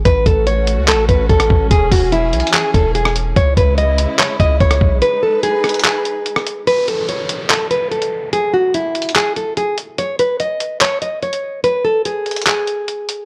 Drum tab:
HH |x-----------x-----------x-----------x-----------x-----------x-----------x-----x-----------------|x-----------o-----------x-----------x---x---x---x-----------x-----------x-----------x-----------|x-----------x-----------x-----------x-----------x-----------x-----------x-----x-----------------|x-----------------------x-----------x--x--x--x--x-----------x-----------x-----------x-----------|
CP |------------------------------------------------x-----------------------------------------------|------------------------------------------------x-----------------------------------------------|------------------------------------------------x-----------------------------------------------|------------------------------------------------x-----------------------------------------------|
SD |------------------------------------------------------------------------------r-----------------|------------------------------------------------------------------------------r-----------------|------------------------------------------------------------------------------r-----------------|------------------------------------r-----------------------------------------r-----------------|
BD |o-----------o-----------------------------------------------o-----------o-----------o-----------|o-----------o-----------------------------------------------o-----------------------------------|o-----------o-----------------------------------------------o-----------o-----------o-----------|------------------------------------------------------------------------------------------------|

HH |x-----------x-----------x-----------x-----------x-----------x-----------x-----x-----------------|x-----------------------x-----------x---x---x---x-----------x-----------x-----------x-----------|x-----------x-----------x-----------x-----------x-----------x-----------x-----x-----------------|x-----------------------x-----------x--x--x--x--x-----------x-----------x-----------x-----------|
CP |------------------------------------------------x-----------------------------------------------|------------------------------------------------x-----------------------------------------------|------------------------------------------------x-----------------------------------------------|------------------------------------------------x-----------------------------------------------|
SD |------------------------------------------------------------------------------------------------|------------------------------------------------------------------------------------------------|------------------------------------------------------------------------------------------------|------------------------------------------------------------------------------------------------|
BD |------------------------------------------------------------------------------------------------|------------------------------------------------------------------------------------------------|------------------------------------------------------------------------------------------------|------------------------------------------------------------------------------------------------|